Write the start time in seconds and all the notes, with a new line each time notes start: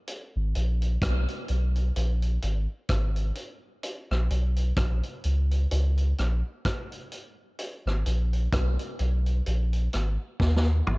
0.07 closed hi-hat
0.36 G#1
0.55 A#1, closed hi-hat
0.82 closed hi-hat
1.02 B1, kick, cross-stick, closed hi-hat
1.28 closed hi-hat
1.48 B1, closed hi-hat
1.76 closed hi-hat
1.96 A#1, closed hi-hat
2.22 closed hi-hat
2.42 G#1, closed hi-hat
2.89 G#1, kick, cross-stick, closed hi-hat
3.16 closed hi-hat
3.35 closed hi-hat
3.83 closed hi-hat
4.11 A#1, cross-stick
4.31 B1, closed hi-hat
4.56 closed hi-hat
4.77 A#1, kick, cross-stick, closed hi-hat
5.03 closed hi-hat
5.24 C#2, closed hi-hat
5.51 closed hi-hat
5.71 C#2, closed hi-hat
5.98 closed hi-hat
6.18 A#1, cross-stick, closed hi-hat
6.65 kick, cross-stick, closed hi-hat
6.92 closed hi-hat
7.12 closed hi-hat
7.59 closed hi-hat
7.86 G#1, cross-stick
8.06 A#1, closed hi-hat
8.33 closed hi-hat
8.53 B1, kick, cross-stick, closed hi-hat
8.79 closed hi-hat
8.99 B1, closed hi-hat
9.26 closed hi-hat
9.46 A#1, closed hi-hat
9.73 closed hi-hat
9.93 G#1, cross-stick, closed hi-hat
10.40 D#2, kick, snare
10.56 snare
10.87 G#1, mid tom